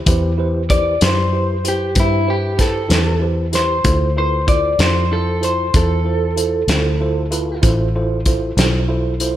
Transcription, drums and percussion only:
0.06 kick, closed hi-hat
0.70 kick, closed hi-hat
1.01 snare, closed hi-hat
1.65 closed hi-hat
1.95 kick, closed hi-hat
2.59 kick, snare, closed hi-hat
2.90 snare, closed hi-hat
3.53 snare, closed hi-hat
3.84 kick, closed hi-hat
4.48 kick, closed hi-hat
4.79 snare, closed hi-hat
5.43 closed hi-hat
5.74 kick, closed hi-hat
6.37 closed hi-hat
6.68 snare, closed hi-hat
7.32 closed hi-hat
7.63 kick, closed hi-hat
8.26 kick, closed hi-hat
8.58 snare, closed hi-hat
9.20 closed hi-hat

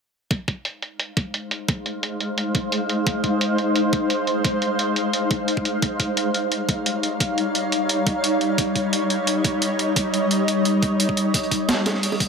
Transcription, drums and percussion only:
0.31 kick, closed hi-hat
0.48 kick, closed hi-hat
0.65 closed hi-hat
0.82 closed hi-hat
1.00 closed hi-hat
1.17 kick, closed hi-hat
1.34 closed hi-hat
1.51 closed hi-hat
1.69 kick, closed hi-hat
1.86 closed hi-hat
2.03 closed hi-hat
2.21 closed hi-hat
2.38 closed hi-hat
2.55 kick, closed hi-hat
2.72 closed hi-hat
2.89 closed hi-hat
3.07 kick, closed hi-hat
3.24 kick, closed hi-hat
3.41 closed hi-hat
3.58 closed hi-hat
3.76 closed hi-hat
3.93 kick, closed hi-hat
4.10 closed hi-hat
4.27 closed hi-hat
4.45 kick, closed hi-hat
4.62 closed hi-hat
4.79 closed hi-hat
4.96 closed hi-hat
5.13 closed hi-hat
5.31 kick, closed hi-hat
5.48 closed hi-hat
5.57 kick
5.65 closed hi-hat
5.82 kick, closed hi-hat
6.00 kick, closed hi-hat
6.17 closed hi-hat
6.34 closed hi-hat
6.52 closed hi-hat
6.69 kick, closed hi-hat
6.86 closed hi-hat
7.03 closed hi-hat
7.20 kick, closed hi-hat
7.38 closed hi-hat
7.55 closed hi-hat
7.72 closed hi-hat
7.89 closed hi-hat
8.07 kick, closed hi-hat
8.24 closed hi-hat
8.41 closed hi-hat
8.58 kick, closed hi-hat
8.76 kick, closed hi-hat
8.93 closed hi-hat
9.10 closed hi-hat
9.27 closed hi-hat
9.45 kick, closed hi-hat
9.62 closed hi-hat
9.79 closed hi-hat
9.96 kick, closed hi-hat
10.14 closed hi-hat
10.31 closed hi-hat
10.48 closed hi-hat
10.65 closed hi-hat
10.83 kick, closed hi-hat
11.00 closed hi-hat
11.09 kick
11.17 closed hi-hat
11.34 kick, closed hi-hat
11.43 closed hi-hat
11.51 kick, closed hi-hat
11.69 snare, closed hi-hat
11.86 snare, closed hi-hat, high bongo
11.95 snare
12.03 closed hi-hat, open hi-hat
12.12 high bongo
12.20 kick, closed hi-hat

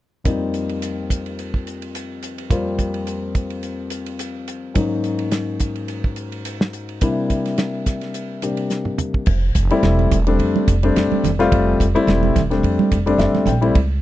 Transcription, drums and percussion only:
0.25 kick, hi-hat pedal, ride
0.54 hi-hat pedal, ride
0.69 ride
0.82 hi-hat pedal, ride
1.10 kick, hi-hat pedal, ride
1.26 ride
1.39 hi-hat pedal, ride
1.54 kick
1.67 hi-hat pedal, ride
1.82 ride
1.95 hi-hat pedal, ride
2.23 hi-hat pedal, ride
2.38 ride
2.50 kick, hi-hat pedal, ride
2.79 kick, hi-hat pedal, ride
2.94 ride
3.07 hi-hat pedal, ride
3.35 kick, hi-hat pedal, ride
3.50 ride
3.63 hi-hat pedal, ride
3.90 hi-hat pedal, ride
4.06 ride
4.19 hi-hat pedal, ride
4.48 hi-hat pedal, ride
4.75 kick, hi-hat pedal, ride
5.04 hi-hat pedal, ride
5.19 ride
5.31 snare, hi-hat pedal, ride
5.60 kick, hi-hat pedal, ride
5.76 ride
5.88 hi-hat pedal, ride
6.04 kick
6.16 hi-hat pedal, ride
6.32 ride
6.45 hi-hat pedal, ride
6.61 snare
6.73 hi-hat pedal, ride
6.89 ride
7.01 kick, hi-hat pedal, ride
7.30 kick, hi-hat pedal, ride
7.46 snare, ride
7.58 snare, hi-hat pedal, ride
7.86 kick, snare, hi-hat pedal, ride
8.01 snare, ride
8.14 hi-hat pedal, ride
8.42 hi-hat pedal, ride
8.57 ride
8.70 snare, hi-hat pedal
8.85 mid tom
8.98 hi-hat pedal, mid tom
9.14 kick
9.26 kick, crash
9.55 kick, hi-hat pedal, ride
9.70 ride
9.83 snare, ride
9.99 high conga
10.11 kick, hi-hat pedal, ride, low conga
10.27 ride
10.40 ride
10.56 high conga
10.68 kick, hi-hat pedal, ride
10.83 ride
10.96 snare, ride
11.12 high conga
11.24 snare, hi-hat pedal, ride, low conga
11.40 snare, ride
11.52 kick, ride
11.80 kick, hi-hat pedal, ride
11.96 ride
12.08 snare, ride
12.23 high conga
12.36 kick, snare, hi-hat pedal, ride, low conga
12.51 snare, ride
12.64 ride
12.79 high conga
12.92 kick, hi-hat pedal, ride
13.07 ride
13.19 snare, ride
13.35 snare, high conga
13.47 snare, hi-hat pedal, ride, low conga
13.62 ride
13.75 kick, ride

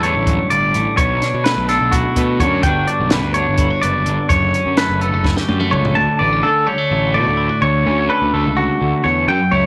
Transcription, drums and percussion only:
0.03 closed hi-hat
0.27 kick, closed hi-hat
0.50 closed hi-hat
0.74 closed hi-hat
0.98 kick, closed hi-hat
1.22 snare, closed hi-hat
1.46 snare, closed hi-hat
1.69 snare, closed hi-hat
1.92 kick, closed hi-hat
2.16 kick, closed hi-hat
2.40 kick, closed hi-hat
2.63 kick, closed hi-hat
2.88 closed hi-hat
3.10 snare, closed hi-hat
3.34 closed hi-hat
3.58 kick, closed hi-hat
3.83 closed hi-hat
4.06 closed hi-hat
4.30 kick, closed hi-hat
4.54 closed hi-hat
4.77 snare, closed hi-hat
5.01 closed hi-hat
5.24 kick, snare
5.37 snare
5.49 high tom
5.61 mid tom
5.73 mid tom
5.85 floor tom

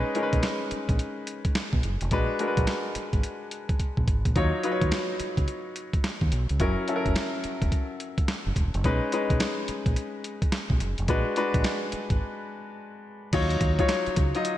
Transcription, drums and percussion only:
0.15 closed hi-hat
0.33 kick, closed hi-hat
0.43 snare, closed hi-hat
0.71 closed hi-hat
0.89 kick, closed hi-hat
0.99 closed hi-hat
1.27 closed hi-hat
1.45 kick, closed hi-hat
1.55 snare, closed hi-hat
1.73 kick
1.83 closed hi-hat
2.01 closed hi-hat
2.11 kick, closed hi-hat
2.39 closed hi-hat
2.57 kick, closed hi-hat
2.67 snare, closed hi-hat
2.95 closed hi-hat
3.13 kick, closed hi-hat
3.23 closed hi-hat
3.51 closed hi-hat
3.69 kick, closed hi-hat
3.80 kick, closed hi-hat
3.97 kick
4.08 kick, closed hi-hat
4.25 kick, closed hi-hat
4.36 kick, closed hi-hat
4.63 closed hi-hat
4.81 kick, closed hi-hat
4.92 snare, closed hi-hat
5.20 closed hi-hat
5.37 kick, closed hi-hat
5.48 closed hi-hat
5.76 closed hi-hat
5.93 kick, closed hi-hat
6.04 snare, closed hi-hat
6.21 kick
6.32 closed hi-hat
6.49 closed hi-hat
6.60 kick, closed hi-hat
6.88 closed hi-hat
7.06 kick, closed hi-hat
7.16 snare, closed hi-hat
7.44 closed hi-hat
7.62 kick, closed hi-hat
7.72 kick, closed hi-hat
8.00 closed hi-hat
8.18 kick, closed hi-hat
8.28 snare, closed hi-hat
8.56 kick, closed hi-hat
8.74 closed hi-hat
8.84 kick, closed hi-hat
9.12 closed hi-hat
9.30 kick, closed hi-hat
9.40 snare, closed hi-hat
9.68 closed hi-hat
9.86 kick, closed hi-hat
9.96 closed hi-hat
10.24 closed hi-hat
10.42 kick, closed hi-hat
10.52 snare, closed hi-hat
10.70 kick
10.80 closed hi-hat
10.98 closed hi-hat
11.08 kick, closed hi-hat
11.36 closed hi-hat
11.54 kick, closed hi-hat
11.64 snare, closed hi-hat
11.92 closed hi-hat
12.10 kick, closed hi-hat
13.33 kick, closed hi-hat, crash
13.50 closed hi-hat
13.61 kick, closed hi-hat
13.79 kick, closed hi-hat
13.89 snare, closed hi-hat
14.06 closed hi-hat
14.16 kick, closed hi-hat
14.35 closed hi-hat
14.45 closed hi-hat

